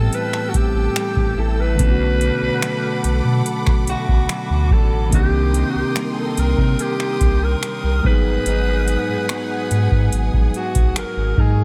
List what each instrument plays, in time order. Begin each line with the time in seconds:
Already playing: clean electric guitar A2 G3 C4 E4, tine electric piano E3 A3 B3 C4 G4, alto saxophone A4, string section A4 G5 A5 E6
0.13 alto saxophone B4, closed hi-hat
0.33 finger snap
0.49 alto saxophone F#4
0.54 sub bass A1, alto saxophone G4, kick, closed hi-hat
0.96 clean electric guitar G3, finger snap, closed hi-hat
1.16 sub bass A1, kick
1.37 sub bass A1, clean electric guitar E4, alto saxophone A4
1.60 alto saxophone B4
1.75 tine electric piano D3 A3
1.79 sub bass B1, clean electric guitar B2 D4, tine electric piano B3 C#4, string section F#5 B5 D6, kick, closed hi-hat
1.84 tine electric piano E4
1.91 tine electric piano F#4
2.21 closed hi-hat
2.42 sub bass B1
2.62 clean electric guitar F#3 A3 D4, finger snap, closed hi-hat
3.04 sub bass B1, closed hi-hat
3.25 sub bass B2
3.46 closed hi-hat
3.67 finger snap, kick
3.87 sub bass B1, alto saxophone F#4, closed hi-hat
4.09 sub bass B1, kick
4.29 clean electric guitar F#3, finger snap, closed hi-hat
4.50 sub bass D2
4.70 sub bass A1, clean electric guitar D4, alto saxophone A4, kick
5.08 tine electric piano D#3 A#3
5.12 sub bass C2, clean electric guitar C3 D#4, tine electric piano C4 D4, alto saxophone G4, string section A#4 G5 C6 D#6, kick, closed hi-hat
5.18 tine electric piano G4
5.54 closed hi-hat
5.70 alto saxophone G4
5.75 sub bass C2
5.96 clean electric guitar G3 A#3 D#4, finger snap, closed hi-hat
6.13 alto saxophone G#4
6.19 alto saxophone A4
6.37 sub bass C2, alto saxophone A#4, closed hi-hat
6.58 sub bass C3, kick
6.79 alto saxophone G4, closed hi-hat
7.00 finger snap
7.21 sub bass C2, kick, closed hi-hat
7.44 alto saxophone A#4
7.63 clean electric guitar G3, finger snap, closed hi-hat
7.83 sub bass C2
8.00 tine electric piano F#3 G#3
8.04 sub bass G#1, clean electric guitar G#2, tine electric piano B3 D#4, string section G#4 F#5 G#5, alto saxophone B4, kick
8.09 tine electric piano G#4
8.46 sub bass G#1, clean electric guitar G#2 D#4, closed hi-hat
8.88 closed hi-hat
9.09 sub bass G#2
9.29 clean electric guitar F#3 B3 D#4, finger snap, closed hi-hat
9.71 sub bass G#2, closed hi-hat
9.91 sub bass G#2, kick
10.12 sub bass G#1, closed hi-hat
10.34 sub bass A#1, kick
10.54 alto saxophone F#4, closed hi-hat
10.75 sub bass B1, kick, closed hi-hat
10.96 sub bass G#1, clean electric guitar F#3, alto saxophone A#4, finger snap, closed hi-hat
11.17 sub bass G#1
11.37 sub bass G#2, clean electric guitar D#4, alto saxophone G#4, kick